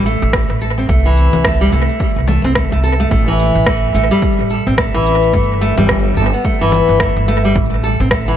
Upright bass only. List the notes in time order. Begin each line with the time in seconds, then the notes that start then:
Already playing: A1
0.22 A1
0.50 A1
0.89 C2
1.33 C2
1.72 C2
2.16 C2
2.44 C2
2.72 C2
3.11 A1
3.55 A1
3.95 A1
4.39 A1
4.67 A1
4.94 A1
5.33 G1
5.78 G1
6.17 G1
6.61 G1
6.89 G1
7.16 G1
7.56 A1
8.00 A1